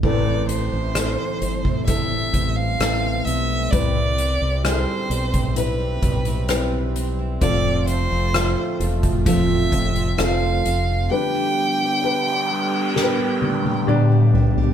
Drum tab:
CC |x---------------|----------------|----------------|----------------|
HH |--x-x-x-x-x-x-x-|x-x-x-xxx-xxx-x-|x-x-x-xxx-xxx-x-|----------------|
SD |----r-------r---|----r-------r---|----r-------r---|--------o-------|
T1 |----------------|----------------|----------------|----------oo----|
T2 |----------------|----------------|----------------|------------o---|
FT |----------------|----------------|----------------|--------------oo|
BD |o------oo-o-----|o------o--o-----|o------oo-o-----|----------------|